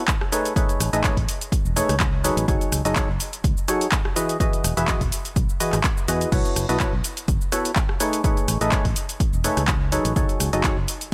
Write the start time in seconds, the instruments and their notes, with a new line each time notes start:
0.08 kick, clap, closed hi-hat, shaker
0.21 cross-stick
0.32 synth stab A3 D#4 G#4 A4 B4 C#5, open hi-hat, shaker
0.45 closed hi-hat, shaker
0.56 synth stab A3 D#4 G#4 A4 B4 C#5, kick, closed hi-hat, shaker
0.69 closed hi-hat, shaker
0.80 fingered electric bass A1, cross-stick, open hi-hat, shaker
0.93 fingered electric bass A1, synth stab A3 D#4 G#4 A4 B4 D#5, closed hi-hat, shaker
1.04 synth stab A3 D#4 G#4 A4 B4 C#5, kick, clap, closed hi-hat, shaker
1.17 fingered electric bass A1, kick, open hi-hat
1.29 open hi-hat, shaker
1.41 closed hi-hat, shaker
1.52 kick, closed hi-hat, shaker
1.65 fingered electric bass E1, shaker
1.76 synth stab A3 D#4 G#4 A4 B4 C#5, open hi-hat, shaker
1.89 fingered electric bass C#2, cross-stick, closed hi-hat, shaker
2.00 kick, clap, closed hi-hat, shaker
2.24 synth stab F#3 D#4 G#4 A4 B4 C#5, open hi-hat, shaker
2.37 fingered electric bass A1, closed hi-hat, shaker
2.48 fingered electric bass F#1, synth stab F#3 D#4 F#4 G#4 A4 C#5, kick, closed hi-hat, shaker
2.61 closed hi-hat, shaker
2.72 fingered electric bass C#2, cross-stick, open hi-hat, shaker
2.85 fingered electric bass F#1, synth stab F#3 D#4 F#4 G#4 A4 D#5, open hi-hat, shaker
2.96 synth stab F#3 D#4 F#4 G#4 A4 C#5, kick, clap, closed hi-hat, shaker
3.09 fingered electric bass F#1
3.20 open hi-hat, shaker
3.33 closed hi-hat, shaker
3.44 fingered electric bass C#2, kick, closed hi-hat, shaker
3.57 shaker
3.68 synth stab F#3 D#4 F#4 G#4 A4 C#5, cross-stick, open hi-hat, shaker
3.81 closed hi-hat, shaker
3.92 kick, clap, closed hi-hat, shaker
4.05 cross-stick
4.16 synth stab E3 E4 F#4 G#4 B4 D#5, open hi-hat, shaker
4.29 closed hi-hat, shaker
4.40 synth stab E3 E4 F#4 G#4 B4 D#5, kick, closed hi-hat, shaker
4.53 closed hi-hat, shaker
4.64 fingered electric bass E1, cross-stick, open hi-hat, shaker
4.77 fingered electric bass E1, synth stab E3 E4 F#4 G#4 B4 E5, closed hi-hat, shaker
4.88 synth stab E3 E4 F#4 G#4 B4 D#5, kick, clap, closed hi-hat, shaker
5.01 fingered electric bass E1, kick, open hi-hat, shaker
5.12 open hi-hat, shaker
5.25 closed hi-hat, shaker
5.36 fingered electric bass B1, kick, closed hi-hat, shaker
5.49 shaker
5.60 synth stab E3 E4 F#4 G#4 B4 D#5, open hi-hat, shaker
5.73 fingered electric bass G#1, cross-stick, clap, closed hi-hat, shaker
5.84 kick, clap, closed hi-hat, shaker
5.97 shaker
6.08 fingered electric bass E2, synth stab B3 E4 F#4 G#4 B4 D#5, cross-stick, open hi-hat, shaker
6.21 closed hi-hat, shaker
6.32 fingered electric bass B1, synth stab B3 E4 F#4 A4 B4 C#5, kick, closed hi-hat, crash, shaker
6.45 closed hi-hat, shaker
6.56 fingered electric bass F#1, cross-stick, open hi-hat, shaker
6.69 fingered electric bass B1, synth stab B3 E4 F#4 A4 B4 D#5, open hi-hat, shaker
6.80 synth stab B3 E4 F#4 A4 C#5, kick, clap, closed hi-hat, shaker
6.93 fingered electric bass B1
7.04 open hi-hat, shaker
7.17 closed hi-hat, shaker
7.28 fingered electric bass F#1, kick, closed hi-hat, shaker
7.41 shaker
7.52 synth stab B3 E4 F#4 A4 B4 C#5, cross-stick, open hi-hat, shaker
7.65 closed hi-hat, shaker
7.76 kick, clap, closed hi-hat, shaker
7.89 cross-stick
8.00 synth stab A3 D#4 G#4 A4 B4 C#5, open hi-hat, shaker
8.13 closed hi-hat, shaker
8.24 synth stab A3 D#4 G#4 A4 B4 C#5, kick, closed hi-hat, shaker
8.37 closed hi-hat, shaker
8.48 fingered electric bass A1, cross-stick, open hi-hat, shaker
8.61 fingered electric bass A1, synth stab A3 D#4 G#4 A4 B4 D#5, closed hi-hat, shaker
8.72 synth stab A3 G#4 A4 C#5, kick, clap, closed hi-hat, shaker
8.85 fingered electric bass A1, kick, open hi-hat
8.96 open hi-hat, shaker
9.09 closed hi-hat, shaker
9.20 kick, closed hi-hat, shaker
9.33 fingered electric bass E1, shaker
9.44 synth stab A3 D#4 G#4 A4 B4 C#5, open hi-hat, shaker
9.57 fingered electric bass C#2, cross-stick, closed hi-hat, shaker
9.68 kick, clap, closed hi-hat, shaker
9.92 synth stab F#3 D#4 G#4 A4 B4 C#5, open hi-hat, shaker
10.05 fingered electric bass A1, closed hi-hat, shaker
10.16 fingered electric bass F#1, synth stab F#3 D#4 F#4 G#4 A4 C#5, kick, closed hi-hat, shaker
10.29 closed hi-hat, shaker
10.40 fingered electric bass C#2, cross-stick, open hi-hat, shaker
10.53 fingered electric bass F#1, synth stab F#3 D#4 F#4 G#4 A4 D#5, open hi-hat, shaker
10.64 synth stab F#3 D#4 F#4 G#4 A4 C#5, kick, clap, closed hi-hat, shaker
10.77 fingered electric bass F#1
10.88 open hi-hat, shaker
11.01 closed hi-hat, shaker